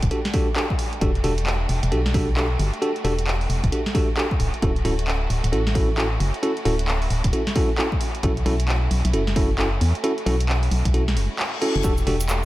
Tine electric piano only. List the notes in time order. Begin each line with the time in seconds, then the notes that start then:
0.11 D4 F#4 G4 A4
0.34 D4 F#4 G4 A4
0.56 D4 F#4 G4 A4
1.01 D4 F#4 G4 A4
1.24 D4 F#4 G4 A4
1.92 D4 F#4 G4 A4
2.14 D4 F#4 G4 A4
2.37 D4 F#4 G4 A4
2.82 D4 F#4 G4 A4
3.04 D4 F#4 G4 A4
3.72 D4 F#4 G4 A4
3.95 D4 F#4 G4 A4
4.17 D4 F#4 G4 A4
4.62 C#4 E4 F#4 A4
4.85 C#4 E4 F#4 A4
5.52 C#4 E4 F#4 A4
5.75 C#4 E4 F#4 A4
5.98 C#4 E4 F#4 A4
6.43 C#4 E4 F#4 A4
6.65 C#4 E4 F#4 A4
7.33 C#4 E4 F#4 A4
7.56 C#4 E4 F#4 A4
7.78 C#4 E4 F#4 A4
8.23 C#4 E4 F#4 A4
8.46 C#4 E4 F#4 A4
9.13 C#4 E4 F#4 A4
9.36 C#4 E4 F#4 A4
9.59 C#4 E4 F#4 A4
10.04 C#4 E4 F#4 A4
10.26 C#4 E4 F#4 A4
10.94 C#4 E4 F#4 A4
11.62 C#4 E4 F#4 A4
11.84 D4 F#4 G4 A4
12.07 D4 F#4 G4 A4